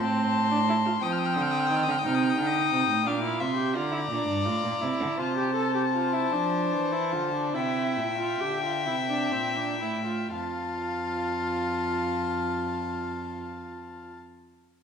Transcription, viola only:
0.00 0.50 C4 medium
0.51 0.58 D4 medium
0.69 0.75 E4 medium
0.85 0.92 F4 medium
1.02 2.02 C4 medium
2.04 3.04 D#4 medium
3.06 3.23 D4 medium
3.23 3.41 E4 medium
3.40 3.56 F4 medium
3.56 3.76 G4 medium
3.75 3.91 F4 medium
3.92 3.99 E4 medium
4.10 4.47 D4 medium
4.45 4.83 F4 medium
4.81 5.20 E4 medium
5.19 5.37 F4 medium
5.37 5.54 G4 medium
5.55 5.74 A4 medium
5.75 5.82 G4 medium
5.94 6.15 F4 medium
6.13 6.34 E4 medium
6.33 6.93 D4 medium
6.92 7.14 E4 medium
7.12 7.33 F4 medium
7.34 7.56 D4 medium
7.54 8.18 E4 medium
8.18 8.42 F4 medium
8.40 8.63 G4 medium
8.64 8.86 F4 medium
8.86 8.94 E4 medium
9.09 9.33 D4 medium
9.32 9.58 C4 medium
9.57 9.80 D4 medium
9.80 10.05 E4 medium
10.05 10.31 F4 medium
10.31 14.15 F4 medium

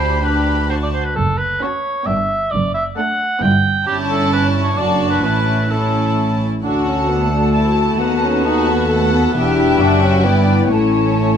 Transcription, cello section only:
0.00 0.94 D2 soft
1.16 1.53 F#2 soft
2.08 2.44 G2 medium
2.53 2.88 F#2 medium
3.42 3.77 G2 medium
3.87 4.73 G2 medium
4.78 5.24 F#2 medium
5.24 6.41 A2 soft
6.64 7.96 D2 soft
7.99 9.32 D#2 soft
9.35 9.79 E2 medium
9.80 10.25 F#2 medium
10.25 10.70 G2 medium
10.71 11.37 A2 soft

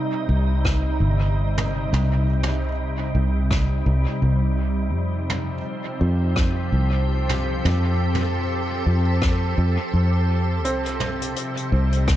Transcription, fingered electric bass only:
0.29 0.98 C2 medium
1.00 1.89 G1 medium
1.93 3.12 C2 medium
3.15 3.83 C2 medium
3.86 4.05 C2 loud
4.22 4.94 C2 medium
4.94 5.62 F2 medium
6.01 6.69 F2 medium
6.72 7.61 C2 medium
7.65 8.84 F2 medium
8.86 9.55 F2 medium
9.58 9.76 F2 medium
9.93 10.65 F2 medium
10.65 11.34 C2 medium
11.72 12.16 C2 medium

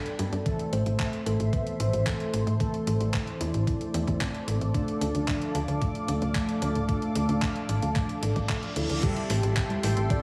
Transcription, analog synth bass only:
0.19 0.31 G2 medium
0.32 0.44 G2 medium
0.73 0.84 A1 medium
0.86 0.98 A1 medium
1.26 1.38 A1 medium
1.40 1.51 A1 medium
1.80 1.91 A1 medium
1.93 2.05 A1 medium
2.33 2.45 A1 medium
2.47 2.58 A2 medium
2.87 2.98 A1 medium
3.00 3.12 A1 medium
3.41 3.52 E2 medium
3.54 3.65 A1 medium
3.94 4.06 E2 medium
4.08 4.19 E2 medium
4.48 4.59 A1 medium
4.61 4.73 A1 medium
5.01 5.13 D2 medium
5.15 5.26 D2 medium
5.55 5.66 D2 medium
5.68 5.80 D2 medium
6.08 6.20 D2 medium
6.22 6.33 D2 medium
6.62 6.73 D2 medium
6.75 6.87 D1 medium
7.16 7.27 D2 medium
7.29 7.40 D2 medium
7.69 7.80 A1 medium
7.83 7.94 D2 medium
8.23 8.34 A1 medium
8.36 8.47 A1 medium
8.76 8.88 D2 medium
8.90 9.01 D2 medium
9.30 9.41 A1 medium
9.43 9.55 A1 medium
9.83 9.95 A1 medium
9.97 10.08 A1 medium

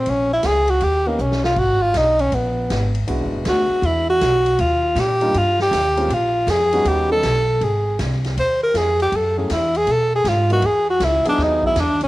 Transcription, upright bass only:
0.07 0.43 A#1 medium
0.44 0.80 C#2 medium
0.82 1.18 D#2 medium
1.19 1.55 B1 medium
1.56 1.93 G#1 medium
1.95 2.31 B1 medium
2.32 2.69 A#1 medium
2.70 3.07 G#1 medium
3.08 3.20 B1 medium
3.20 3.32 G#1 medium
3.33 3.45 E1 medium
3.46 3.69 D2 medium
3.70 muted upright bass stroke soft
3.82 4.19 E2 medium
4.21 4.58 B1 medium
4.59 4.95 D#2 medium
4.96 5.33 A#2 loud
5.34 5.71 G2 medium
5.71 6.08 D#2 medium
6.09 6.46 A#1 medium
6.47 6.84 F2 loud
6.85 7.22 D#2 medium
7.23 7.60 B1 medium
7.61 7.98 G#1 medium
7.99 8.35 C2 loud
8.37 8.73 D#2 medium
8.74 9.11 F2 medium
9.12 9.49 F#2 medium
9.50 9.87 E2 loud
9.87 10.24 B2 medium
10.24 10.61 G#2 medium
10.62 10.99 E2 medium
11.00 11.23 C#2 loud
11.38 11.75 D#2 medium
11.76 11.89 E2 medium
11.89 12.01 D#2 medium
12.02 12.08 B1 medium

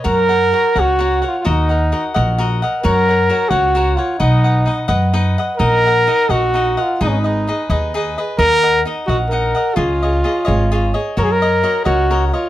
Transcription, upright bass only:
0.05 0.51 F#2 medium
0.75 1.21 C#2 medium
1.46 1.92 D#2 medium
2.16 2.61 A#1 loud
2.85 3.29 F#2 loud
3.51 3.96 C#2 medium
4.20 4.66 B1 medium
4.89 5.35 F#2 medium
5.60 6.06 A#1 medium
6.29 6.75 A#1 medium
7.01 7.46 G#1 medium
7.70 8.15 D#2 loud
8.38 8.83 D#2 loud
9.08 9.53 A#1 medium
9.77 10.22 C#2 loud
10.48 10.93 G#1 medium
11.17 11.62 F#2 medium
11.86 12.31 C#2 medium

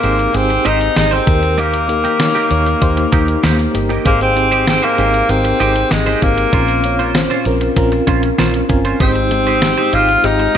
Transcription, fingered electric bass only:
0.04 0.26 G#1 medium
0.34 0.57 G#1 medium
0.65 0.88 G#1 medium
0.96 1.19 G#1 medium
1.27 2.05 D#2 medium
2.51 2.73 D#2 medium
2.82 3.04 D#2 medium
3.13 3.35 D#2 loud
3.44 3.66 D#2 medium
3.75 3.97 G1 medium
4.06 4.79 G#1 medium
4.98 5.21 G#1 medium
5.29 5.52 G#1 loud
5.60 5.82 G#1 medium
5.91 6.13 G#1 medium
6.22 6.44 G#1 medium
6.53 7.26 A#1 medium
7.46 7.68 A#1 medium
7.77 7.99 A#1 medium
8.07 8.30 A#1 medium
8.39 8.61 A#1 medium
8.70 8.92 G1 medium
9.00 9.74 G#1 loud
9.93 10.15 G#1 medium
10.24 10.46 G#1 loud

